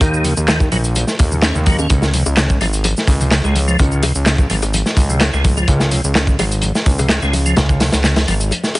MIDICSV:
0, 0, Header, 1, 4, 480
1, 0, Start_track
1, 0, Tempo, 472441
1, 12, Time_signature, 4, 2, 24, 8
1, 8937, End_track
2, 0, Start_track
2, 0, Title_t, "Tonewheel organ"
2, 0, Program_c, 0, 16
2, 15, Note_on_c, 0, 51, 84
2, 242, Note_off_c, 0, 51, 0
2, 252, Note_on_c, 0, 49, 76
2, 354, Note_off_c, 0, 49, 0
2, 493, Note_on_c, 0, 51, 87
2, 594, Note_off_c, 0, 51, 0
2, 731, Note_on_c, 0, 54, 80
2, 793, Note_off_c, 0, 54, 0
2, 1337, Note_on_c, 0, 49, 79
2, 1393, Note_off_c, 0, 49, 0
2, 1451, Note_on_c, 0, 61, 86
2, 1572, Note_off_c, 0, 61, 0
2, 1577, Note_on_c, 0, 49, 74
2, 1633, Note_off_c, 0, 49, 0
2, 1691, Note_on_c, 0, 54, 74
2, 1793, Note_off_c, 0, 54, 0
2, 1817, Note_on_c, 0, 61, 74
2, 1926, Note_off_c, 0, 61, 0
2, 1931, Note_on_c, 0, 49, 79
2, 2161, Note_off_c, 0, 49, 0
2, 2172, Note_on_c, 0, 48, 76
2, 2274, Note_off_c, 0, 48, 0
2, 2409, Note_on_c, 0, 49, 85
2, 2512, Note_off_c, 0, 49, 0
2, 2650, Note_on_c, 0, 53, 77
2, 2712, Note_off_c, 0, 53, 0
2, 3260, Note_on_c, 0, 48, 79
2, 3367, Note_off_c, 0, 48, 0
2, 3372, Note_on_c, 0, 49, 83
2, 3474, Note_off_c, 0, 49, 0
2, 3498, Note_on_c, 0, 56, 79
2, 3606, Note_off_c, 0, 56, 0
2, 3736, Note_on_c, 0, 53, 78
2, 3840, Note_off_c, 0, 53, 0
2, 3852, Note_on_c, 0, 49, 84
2, 4081, Note_off_c, 0, 49, 0
2, 4088, Note_on_c, 0, 48, 78
2, 4192, Note_off_c, 0, 48, 0
2, 4330, Note_on_c, 0, 49, 85
2, 4433, Note_off_c, 0, 49, 0
2, 4570, Note_on_c, 0, 53, 80
2, 4632, Note_off_c, 0, 53, 0
2, 5178, Note_on_c, 0, 48, 78
2, 5286, Note_off_c, 0, 48, 0
2, 5291, Note_on_c, 0, 49, 87
2, 5393, Note_off_c, 0, 49, 0
2, 5420, Note_on_c, 0, 56, 79
2, 5527, Note_off_c, 0, 56, 0
2, 5659, Note_on_c, 0, 53, 77
2, 5761, Note_off_c, 0, 53, 0
2, 5774, Note_on_c, 0, 49, 84
2, 6002, Note_off_c, 0, 49, 0
2, 6016, Note_on_c, 0, 48, 79
2, 6116, Note_off_c, 0, 48, 0
2, 6254, Note_on_c, 0, 49, 85
2, 6355, Note_off_c, 0, 49, 0
2, 6493, Note_on_c, 0, 53, 81
2, 6554, Note_off_c, 0, 53, 0
2, 7099, Note_on_c, 0, 48, 82
2, 7207, Note_off_c, 0, 48, 0
2, 7213, Note_on_c, 0, 49, 83
2, 7314, Note_off_c, 0, 49, 0
2, 7340, Note_on_c, 0, 56, 79
2, 7447, Note_off_c, 0, 56, 0
2, 7579, Note_on_c, 0, 53, 76
2, 7681, Note_off_c, 0, 53, 0
2, 7691, Note_on_c, 0, 49, 84
2, 7921, Note_off_c, 0, 49, 0
2, 7931, Note_on_c, 0, 48, 81
2, 8033, Note_off_c, 0, 48, 0
2, 8172, Note_on_c, 0, 49, 86
2, 8274, Note_off_c, 0, 49, 0
2, 8413, Note_on_c, 0, 53, 81
2, 8474, Note_off_c, 0, 53, 0
2, 8937, End_track
3, 0, Start_track
3, 0, Title_t, "Analog synth bass"
3, 0, Program_c, 1, 38
3, 7, Note_on_c, 1, 39, 101
3, 345, Note_off_c, 1, 39, 0
3, 377, Note_on_c, 1, 39, 80
3, 703, Note_off_c, 1, 39, 0
3, 731, Note_on_c, 1, 34, 96
3, 1067, Note_off_c, 1, 34, 0
3, 1217, Note_on_c, 1, 39, 106
3, 1550, Note_off_c, 1, 39, 0
3, 1577, Note_on_c, 1, 39, 103
3, 1903, Note_off_c, 1, 39, 0
3, 1933, Note_on_c, 1, 37, 99
3, 2268, Note_off_c, 1, 37, 0
3, 2297, Note_on_c, 1, 37, 81
3, 2623, Note_off_c, 1, 37, 0
3, 2650, Note_on_c, 1, 32, 96
3, 2986, Note_off_c, 1, 32, 0
3, 3124, Note_on_c, 1, 37, 107
3, 3463, Note_off_c, 1, 37, 0
3, 3497, Note_on_c, 1, 37, 94
3, 3824, Note_off_c, 1, 37, 0
3, 3856, Note_on_c, 1, 37, 102
3, 4189, Note_off_c, 1, 37, 0
3, 4218, Note_on_c, 1, 37, 80
3, 4544, Note_off_c, 1, 37, 0
3, 4574, Note_on_c, 1, 32, 97
3, 4908, Note_off_c, 1, 32, 0
3, 5047, Note_on_c, 1, 37, 109
3, 5385, Note_off_c, 1, 37, 0
3, 5420, Note_on_c, 1, 37, 97
3, 5745, Note_off_c, 1, 37, 0
3, 5769, Note_on_c, 1, 37, 99
3, 6105, Note_off_c, 1, 37, 0
3, 6138, Note_on_c, 1, 37, 78
3, 6464, Note_off_c, 1, 37, 0
3, 6491, Note_on_c, 1, 32, 96
3, 6827, Note_off_c, 1, 32, 0
3, 6971, Note_on_c, 1, 37, 104
3, 7307, Note_off_c, 1, 37, 0
3, 7339, Note_on_c, 1, 37, 95
3, 7664, Note_off_c, 1, 37, 0
3, 7693, Note_on_c, 1, 37, 101
3, 8028, Note_off_c, 1, 37, 0
3, 8059, Note_on_c, 1, 37, 79
3, 8385, Note_off_c, 1, 37, 0
3, 8412, Note_on_c, 1, 32, 98
3, 8652, Note_off_c, 1, 32, 0
3, 8937, End_track
4, 0, Start_track
4, 0, Title_t, "Drums"
4, 8, Note_on_c, 9, 36, 107
4, 10, Note_on_c, 9, 60, 73
4, 11, Note_on_c, 9, 64, 85
4, 12, Note_on_c, 9, 82, 53
4, 15, Note_on_c, 9, 42, 90
4, 110, Note_off_c, 9, 36, 0
4, 111, Note_off_c, 9, 60, 0
4, 113, Note_off_c, 9, 64, 0
4, 114, Note_off_c, 9, 82, 0
4, 117, Note_off_c, 9, 42, 0
4, 138, Note_on_c, 9, 82, 32
4, 240, Note_off_c, 9, 82, 0
4, 244, Note_on_c, 9, 63, 102
4, 249, Note_on_c, 9, 42, 67
4, 249, Note_on_c, 9, 46, 77
4, 345, Note_off_c, 9, 63, 0
4, 350, Note_off_c, 9, 42, 0
4, 351, Note_off_c, 9, 46, 0
4, 375, Note_on_c, 9, 82, 63
4, 379, Note_on_c, 9, 60, 47
4, 477, Note_off_c, 9, 82, 0
4, 481, Note_off_c, 9, 60, 0
4, 490, Note_on_c, 9, 38, 118
4, 490, Note_on_c, 9, 39, 109
4, 490, Note_on_c, 9, 82, 53
4, 491, Note_on_c, 9, 42, 80
4, 592, Note_off_c, 9, 38, 0
4, 592, Note_off_c, 9, 39, 0
4, 592, Note_off_c, 9, 82, 0
4, 593, Note_off_c, 9, 42, 0
4, 612, Note_on_c, 9, 60, 71
4, 614, Note_on_c, 9, 36, 95
4, 615, Note_on_c, 9, 63, 67
4, 617, Note_on_c, 9, 82, 29
4, 713, Note_off_c, 9, 60, 0
4, 715, Note_off_c, 9, 36, 0
4, 716, Note_off_c, 9, 63, 0
4, 718, Note_off_c, 9, 82, 0
4, 729, Note_on_c, 9, 46, 72
4, 731, Note_on_c, 9, 42, 61
4, 831, Note_off_c, 9, 46, 0
4, 833, Note_off_c, 9, 42, 0
4, 856, Note_on_c, 9, 82, 62
4, 860, Note_on_c, 9, 42, 39
4, 957, Note_off_c, 9, 82, 0
4, 961, Note_off_c, 9, 42, 0
4, 970, Note_on_c, 9, 82, 52
4, 974, Note_on_c, 9, 42, 90
4, 977, Note_on_c, 9, 60, 49
4, 977, Note_on_c, 9, 63, 99
4, 1071, Note_off_c, 9, 82, 0
4, 1076, Note_off_c, 9, 42, 0
4, 1079, Note_off_c, 9, 60, 0
4, 1079, Note_off_c, 9, 63, 0
4, 1090, Note_on_c, 9, 38, 36
4, 1096, Note_on_c, 9, 82, 32
4, 1191, Note_off_c, 9, 38, 0
4, 1198, Note_off_c, 9, 82, 0
4, 1209, Note_on_c, 9, 60, 78
4, 1211, Note_on_c, 9, 46, 80
4, 1213, Note_on_c, 9, 42, 68
4, 1217, Note_on_c, 9, 36, 100
4, 1311, Note_off_c, 9, 60, 0
4, 1312, Note_off_c, 9, 46, 0
4, 1314, Note_off_c, 9, 42, 0
4, 1318, Note_off_c, 9, 36, 0
4, 1337, Note_on_c, 9, 82, 64
4, 1347, Note_on_c, 9, 63, 64
4, 1439, Note_off_c, 9, 82, 0
4, 1445, Note_on_c, 9, 38, 112
4, 1447, Note_on_c, 9, 42, 90
4, 1449, Note_off_c, 9, 63, 0
4, 1452, Note_on_c, 9, 39, 109
4, 1452, Note_on_c, 9, 82, 52
4, 1547, Note_off_c, 9, 38, 0
4, 1548, Note_off_c, 9, 42, 0
4, 1553, Note_off_c, 9, 39, 0
4, 1553, Note_off_c, 9, 82, 0
4, 1568, Note_on_c, 9, 60, 54
4, 1577, Note_on_c, 9, 82, 30
4, 1669, Note_off_c, 9, 60, 0
4, 1679, Note_off_c, 9, 82, 0
4, 1686, Note_on_c, 9, 42, 69
4, 1690, Note_on_c, 9, 46, 72
4, 1691, Note_on_c, 9, 63, 103
4, 1693, Note_on_c, 9, 36, 97
4, 1788, Note_off_c, 9, 42, 0
4, 1792, Note_off_c, 9, 46, 0
4, 1793, Note_off_c, 9, 63, 0
4, 1795, Note_off_c, 9, 36, 0
4, 1815, Note_on_c, 9, 60, 80
4, 1816, Note_on_c, 9, 82, 64
4, 1917, Note_off_c, 9, 60, 0
4, 1917, Note_off_c, 9, 82, 0
4, 1927, Note_on_c, 9, 42, 84
4, 1929, Note_on_c, 9, 64, 94
4, 1932, Note_on_c, 9, 82, 53
4, 1933, Note_on_c, 9, 36, 104
4, 2028, Note_off_c, 9, 42, 0
4, 2030, Note_off_c, 9, 64, 0
4, 2033, Note_off_c, 9, 82, 0
4, 2034, Note_off_c, 9, 36, 0
4, 2049, Note_on_c, 9, 60, 54
4, 2054, Note_on_c, 9, 38, 52
4, 2057, Note_on_c, 9, 82, 31
4, 2150, Note_off_c, 9, 60, 0
4, 2156, Note_off_c, 9, 38, 0
4, 2159, Note_off_c, 9, 82, 0
4, 2170, Note_on_c, 9, 46, 82
4, 2172, Note_on_c, 9, 42, 72
4, 2173, Note_on_c, 9, 63, 94
4, 2271, Note_off_c, 9, 46, 0
4, 2273, Note_off_c, 9, 42, 0
4, 2275, Note_off_c, 9, 63, 0
4, 2295, Note_on_c, 9, 82, 63
4, 2296, Note_on_c, 9, 60, 72
4, 2397, Note_off_c, 9, 82, 0
4, 2398, Note_off_c, 9, 60, 0
4, 2409, Note_on_c, 9, 38, 110
4, 2409, Note_on_c, 9, 39, 108
4, 2409, Note_on_c, 9, 82, 52
4, 2410, Note_on_c, 9, 42, 89
4, 2511, Note_off_c, 9, 38, 0
4, 2511, Note_off_c, 9, 39, 0
4, 2511, Note_off_c, 9, 42, 0
4, 2511, Note_off_c, 9, 82, 0
4, 2534, Note_on_c, 9, 63, 62
4, 2535, Note_on_c, 9, 82, 29
4, 2540, Note_on_c, 9, 36, 95
4, 2635, Note_off_c, 9, 63, 0
4, 2636, Note_off_c, 9, 82, 0
4, 2641, Note_off_c, 9, 36, 0
4, 2650, Note_on_c, 9, 46, 71
4, 2654, Note_on_c, 9, 42, 70
4, 2658, Note_on_c, 9, 60, 57
4, 2752, Note_off_c, 9, 46, 0
4, 2756, Note_off_c, 9, 42, 0
4, 2759, Note_off_c, 9, 60, 0
4, 2776, Note_on_c, 9, 82, 62
4, 2781, Note_on_c, 9, 42, 43
4, 2878, Note_off_c, 9, 82, 0
4, 2882, Note_off_c, 9, 42, 0
4, 2884, Note_on_c, 9, 42, 89
4, 2889, Note_on_c, 9, 63, 98
4, 2891, Note_on_c, 9, 82, 51
4, 2894, Note_on_c, 9, 60, 80
4, 2986, Note_off_c, 9, 42, 0
4, 2990, Note_off_c, 9, 63, 0
4, 2992, Note_off_c, 9, 82, 0
4, 2996, Note_off_c, 9, 60, 0
4, 3016, Note_on_c, 9, 82, 31
4, 3026, Note_on_c, 9, 38, 39
4, 3118, Note_off_c, 9, 82, 0
4, 3124, Note_on_c, 9, 36, 101
4, 3127, Note_off_c, 9, 38, 0
4, 3130, Note_on_c, 9, 46, 85
4, 3131, Note_on_c, 9, 42, 67
4, 3226, Note_off_c, 9, 36, 0
4, 3232, Note_off_c, 9, 46, 0
4, 3233, Note_off_c, 9, 42, 0
4, 3258, Note_on_c, 9, 42, 45
4, 3258, Note_on_c, 9, 82, 64
4, 3261, Note_on_c, 9, 60, 48
4, 3263, Note_on_c, 9, 63, 69
4, 3359, Note_off_c, 9, 82, 0
4, 3360, Note_off_c, 9, 42, 0
4, 3363, Note_off_c, 9, 60, 0
4, 3364, Note_off_c, 9, 63, 0
4, 3365, Note_on_c, 9, 38, 112
4, 3367, Note_on_c, 9, 42, 98
4, 3372, Note_on_c, 9, 39, 105
4, 3372, Note_on_c, 9, 82, 50
4, 3466, Note_off_c, 9, 38, 0
4, 3469, Note_off_c, 9, 42, 0
4, 3473, Note_off_c, 9, 39, 0
4, 3473, Note_off_c, 9, 82, 0
4, 3494, Note_on_c, 9, 60, 76
4, 3500, Note_on_c, 9, 82, 31
4, 3595, Note_off_c, 9, 60, 0
4, 3602, Note_off_c, 9, 82, 0
4, 3610, Note_on_c, 9, 42, 75
4, 3614, Note_on_c, 9, 46, 72
4, 3618, Note_on_c, 9, 63, 89
4, 3712, Note_off_c, 9, 42, 0
4, 3715, Note_off_c, 9, 46, 0
4, 3720, Note_off_c, 9, 63, 0
4, 3738, Note_on_c, 9, 82, 64
4, 3840, Note_off_c, 9, 82, 0
4, 3852, Note_on_c, 9, 64, 87
4, 3852, Note_on_c, 9, 82, 52
4, 3853, Note_on_c, 9, 60, 55
4, 3854, Note_on_c, 9, 42, 94
4, 3856, Note_on_c, 9, 36, 104
4, 3953, Note_off_c, 9, 64, 0
4, 3953, Note_off_c, 9, 82, 0
4, 3955, Note_off_c, 9, 60, 0
4, 3956, Note_off_c, 9, 42, 0
4, 3958, Note_off_c, 9, 36, 0
4, 3978, Note_on_c, 9, 82, 32
4, 4079, Note_off_c, 9, 82, 0
4, 4088, Note_on_c, 9, 63, 100
4, 4091, Note_on_c, 9, 46, 83
4, 4096, Note_on_c, 9, 42, 76
4, 4097, Note_on_c, 9, 60, 86
4, 4190, Note_off_c, 9, 63, 0
4, 4193, Note_off_c, 9, 46, 0
4, 4198, Note_off_c, 9, 42, 0
4, 4199, Note_off_c, 9, 60, 0
4, 4218, Note_on_c, 9, 82, 62
4, 4320, Note_off_c, 9, 82, 0
4, 4330, Note_on_c, 9, 38, 112
4, 4331, Note_on_c, 9, 39, 101
4, 4331, Note_on_c, 9, 82, 51
4, 4336, Note_on_c, 9, 42, 92
4, 4432, Note_off_c, 9, 38, 0
4, 4433, Note_off_c, 9, 39, 0
4, 4433, Note_off_c, 9, 82, 0
4, 4438, Note_off_c, 9, 42, 0
4, 4454, Note_on_c, 9, 36, 98
4, 4455, Note_on_c, 9, 63, 66
4, 4457, Note_on_c, 9, 82, 30
4, 4458, Note_on_c, 9, 60, 51
4, 4556, Note_off_c, 9, 36, 0
4, 4556, Note_off_c, 9, 63, 0
4, 4559, Note_off_c, 9, 60, 0
4, 4559, Note_off_c, 9, 82, 0
4, 4570, Note_on_c, 9, 46, 76
4, 4577, Note_on_c, 9, 42, 64
4, 4671, Note_off_c, 9, 46, 0
4, 4679, Note_off_c, 9, 42, 0
4, 4696, Note_on_c, 9, 42, 44
4, 4698, Note_on_c, 9, 82, 62
4, 4699, Note_on_c, 9, 60, 81
4, 4798, Note_off_c, 9, 42, 0
4, 4799, Note_off_c, 9, 82, 0
4, 4801, Note_off_c, 9, 60, 0
4, 4811, Note_on_c, 9, 82, 52
4, 4814, Note_on_c, 9, 42, 93
4, 4816, Note_on_c, 9, 63, 85
4, 4913, Note_off_c, 9, 82, 0
4, 4915, Note_off_c, 9, 42, 0
4, 4918, Note_off_c, 9, 63, 0
4, 4935, Note_on_c, 9, 38, 41
4, 4939, Note_on_c, 9, 82, 31
4, 5037, Note_off_c, 9, 38, 0
4, 5041, Note_off_c, 9, 82, 0
4, 5047, Note_on_c, 9, 36, 94
4, 5052, Note_on_c, 9, 46, 84
4, 5053, Note_on_c, 9, 42, 65
4, 5054, Note_on_c, 9, 60, 55
4, 5148, Note_off_c, 9, 36, 0
4, 5153, Note_off_c, 9, 46, 0
4, 5155, Note_off_c, 9, 42, 0
4, 5156, Note_off_c, 9, 60, 0
4, 5179, Note_on_c, 9, 82, 61
4, 5190, Note_on_c, 9, 63, 65
4, 5281, Note_off_c, 9, 82, 0
4, 5285, Note_on_c, 9, 60, 81
4, 5289, Note_on_c, 9, 42, 102
4, 5291, Note_off_c, 9, 63, 0
4, 5292, Note_on_c, 9, 38, 117
4, 5293, Note_on_c, 9, 39, 103
4, 5293, Note_on_c, 9, 82, 50
4, 5387, Note_off_c, 9, 60, 0
4, 5390, Note_off_c, 9, 42, 0
4, 5394, Note_off_c, 9, 38, 0
4, 5395, Note_off_c, 9, 39, 0
4, 5395, Note_off_c, 9, 82, 0
4, 5418, Note_on_c, 9, 82, 30
4, 5520, Note_off_c, 9, 82, 0
4, 5532, Note_on_c, 9, 46, 73
4, 5533, Note_on_c, 9, 63, 98
4, 5534, Note_on_c, 9, 36, 105
4, 5537, Note_on_c, 9, 42, 65
4, 5633, Note_off_c, 9, 46, 0
4, 5635, Note_off_c, 9, 63, 0
4, 5636, Note_off_c, 9, 36, 0
4, 5638, Note_off_c, 9, 42, 0
4, 5659, Note_on_c, 9, 82, 64
4, 5662, Note_on_c, 9, 60, 60
4, 5761, Note_off_c, 9, 82, 0
4, 5764, Note_off_c, 9, 60, 0
4, 5766, Note_on_c, 9, 42, 88
4, 5769, Note_on_c, 9, 36, 113
4, 5773, Note_on_c, 9, 82, 52
4, 5781, Note_on_c, 9, 64, 85
4, 5868, Note_off_c, 9, 42, 0
4, 5871, Note_off_c, 9, 36, 0
4, 5874, Note_off_c, 9, 82, 0
4, 5883, Note_off_c, 9, 64, 0
4, 5890, Note_on_c, 9, 38, 54
4, 5900, Note_on_c, 9, 82, 31
4, 5903, Note_on_c, 9, 60, 83
4, 5991, Note_off_c, 9, 38, 0
4, 6001, Note_off_c, 9, 82, 0
4, 6005, Note_off_c, 9, 60, 0
4, 6006, Note_on_c, 9, 42, 77
4, 6010, Note_on_c, 9, 46, 87
4, 6014, Note_on_c, 9, 63, 88
4, 6108, Note_off_c, 9, 42, 0
4, 6112, Note_off_c, 9, 46, 0
4, 6116, Note_off_c, 9, 63, 0
4, 6139, Note_on_c, 9, 82, 64
4, 6240, Note_off_c, 9, 82, 0
4, 6252, Note_on_c, 9, 38, 114
4, 6253, Note_on_c, 9, 39, 104
4, 6253, Note_on_c, 9, 82, 53
4, 6256, Note_on_c, 9, 42, 90
4, 6257, Note_on_c, 9, 60, 56
4, 6354, Note_off_c, 9, 38, 0
4, 6355, Note_off_c, 9, 39, 0
4, 6355, Note_off_c, 9, 82, 0
4, 6357, Note_off_c, 9, 42, 0
4, 6358, Note_off_c, 9, 60, 0
4, 6372, Note_on_c, 9, 36, 99
4, 6379, Note_on_c, 9, 82, 31
4, 6380, Note_on_c, 9, 63, 62
4, 6474, Note_off_c, 9, 36, 0
4, 6481, Note_off_c, 9, 82, 0
4, 6482, Note_off_c, 9, 63, 0
4, 6492, Note_on_c, 9, 46, 78
4, 6494, Note_on_c, 9, 42, 65
4, 6497, Note_on_c, 9, 60, 90
4, 6593, Note_off_c, 9, 46, 0
4, 6596, Note_off_c, 9, 42, 0
4, 6599, Note_off_c, 9, 60, 0
4, 6618, Note_on_c, 9, 42, 48
4, 6618, Note_on_c, 9, 82, 62
4, 6720, Note_off_c, 9, 42, 0
4, 6720, Note_off_c, 9, 82, 0
4, 6721, Note_on_c, 9, 42, 80
4, 6734, Note_on_c, 9, 82, 54
4, 6738, Note_on_c, 9, 63, 89
4, 6822, Note_off_c, 9, 42, 0
4, 6835, Note_off_c, 9, 82, 0
4, 6840, Note_off_c, 9, 63, 0
4, 6859, Note_on_c, 9, 60, 54
4, 6859, Note_on_c, 9, 82, 32
4, 6861, Note_on_c, 9, 38, 42
4, 6960, Note_off_c, 9, 82, 0
4, 6961, Note_off_c, 9, 60, 0
4, 6963, Note_off_c, 9, 38, 0
4, 6971, Note_on_c, 9, 46, 88
4, 6972, Note_on_c, 9, 36, 97
4, 6977, Note_on_c, 9, 42, 65
4, 7072, Note_off_c, 9, 46, 0
4, 7074, Note_off_c, 9, 36, 0
4, 7078, Note_off_c, 9, 42, 0
4, 7098, Note_on_c, 9, 82, 63
4, 7102, Note_on_c, 9, 42, 42
4, 7103, Note_on_c, 9, 60, 85
4, 7106, Note_on_c, 9, 63, 59
4, 7200, Note_off_c, 9, 82, 0
4, 7204, Note_off_c, 9, 42, 0
4, 7204, Note_off_c, 9, 60, 0
4, 7204, Note_on_c, 9, 38, 118
4, 7208, Note_off_c, 9, 63, 0
4, 7211, Note_on_c, 9, 42, 91
4, 7212, Note_on_c, 9, 39, 98
4, 7212, Note_on_c, 9, 82, 51
4, 7306, Note_off_c, 9, 38, 0
4, 7312, Note_off_c, 9, 42, 0
4, 7314, Note_off_c, 9, 39, 0
4, 7314, Note_off_c, 9, 82, 0
4, 7338, Note_on_c, 9, 82, 32
4, 7440, Note_off_c, 9, 82, 0
4, 7450, Note_on_c, 9, 60, 52
4, 7452, Note_on_c, 9, 46, 78
4, 7454, Note_on_c, 9, 42, 68
4, 7454, Note_on_c, 9, 63, 90
4, 7551, Note_off_c, 9, 60, 0
4, 7553, Note_off_c, 9, 46, 0
4, 7555, Note_off_c, 9, 63, 0
4, 7556, Note_off_c, 9, 42, 0
4, 7579, Note_on_c, 9, 82, 63
4, 7681, Note_off_c, 9, 82, 0
4, 7684, Note_on_c, 9, 42, 74
4, 7686, Note_on_c, 9, 60, 83
4, 7691, Note_on_c, 9, 38, 109
4, 7693, Note_on_c, 9, 82, 53
4, 7697, Note_on_c, 9, 64, 92
4, 7786, Note_off_c, 9, 42, 0
4, 7787, Note_off_c, 9, 60, 0
4, 7793, Note_off_c, 9, 38, 0
4, 7794, Note_off_c, 9, 82, 0
4, 7798, Note_off_c, 9, 64, 0
4, 7816, Note_on_c, 9, 36, 86
4, 7819, Note_on_c, 9, 82, 32
4, 7918, Note_off_c, 9, 36, 0
4, 7920, Note_off_c, 9, 82, 0
4, 7926, Note_on_c, 9, 42, 85
4, 7930, Note_on_c, 9, 38, 104
4, 7932, Note_on_c, 9, 46, 86
4, 7933, Note_on_c, 9, 63, 95
4, 8028, Note_off_c, 9, 42, 0
4, 8032, Note_off_c, 9, 38, 0
4, 8034, Note_off_c, 9, 46, 0
4, 8035, Note_off_c, 9, 63, 0
4, 8050, Note_on_c, 9, 38, 95
4, 8051, Note_on_c, 9, 42, 83
4, 8056, Note_on_c, 9, 60, 52
4, 8057, Note_on_c, 9, 82, 65
4, 8152, Note_off_c, 9, 38, 0
4, 8152, Note_off_c, 9, 42, 0
4, 8158, Note_off_c, 9, 60, 0
4, 8159, Note_off_c, 9, 82, 0
4, 8167, Note_on_c, 9, 38, 108
4, 8171, Note_on_c, 9, 39, 103
4, 8171, Note_on_c, 9, 82, 57
4, 8178, Note_on_c, 9, 42, 83
4, 8268, Note_off_c, 9, 38, 0
4, 8273, Note_off_c, 9, 39, 0
4, 8273, Note_off_c, 9, 82, 0
4, 8280, Note_off_c, 9, 42, 0
4, 8292, Note_on_c, 9, 42, 72
4, 8293, Note_on_c, 9, 60, 83
4, 8296, Note_on_c, 9, 38, 109
4, 8297, Note_on_c, 9, 82, 31
4, 8300, Note_on_c, 9, 63, 68
4, 8393, Note_off_c, 9, 42, 0
4, 8395, Note_off_c, 9, 60, 0
4, 8397, Note_off_c, 9, 38, 0
4, 8399, Note_off_c, 9, 82, 0
4, 8401, Note_off_c, 9, 63, 0
4, 8412, Note_on_c, 9, 46, 78
4, 8413, Note_on_c, 9, 42, 74
4, 8514, Note_off_c, 9, 46, 0
4, 8515, Note_off_c, 9, 42, 0
4, 8538, Note_on_c, 9, 42, 46
4, 8539, Note_on_c, 9, 82, 65
4, 8640, Note_off_c, 9, 42, 0
4, 8640, Note_off_c, 9, 82, 0
4, 8646, Note_on_c, 9, 60, 54
4, 8652, Note_on_c, 9, 63, 77
4, 8652, Note_on_c, 9, 82, 56
4, 8656, Note_on_c, 9, 42, 82
4, 8747, Note_off_c, 9, 60, 0
4, 8753, Note_off_c, 9, 82, 0
4, 8754, Note_off_c, 9, 63, 0
4, 8757, Note_off_c, 9, 42, 0
4, 8773, Note_on_c, 9, 38, 43
4, 8778, Note_on_c, 9, 82, 33
4, 8875, Note_off_c, 9, 38, 0
4, 8880, Note_off_c, 9, 82, 0
4, 8890, Note_on_c, 9, 42, 69
4, 8891, Note_on_c, 9, 46, 89
4, 8891, Note_on_c, 9, 60, 84
4, 8937, Note_off_c, 9, 42, 0
4, 8937, Note_off_c, 9, 46, 0
4, 8937, Note_off_c, 9, 60, 0
4, 8937, End_track
0, 0, End_of_file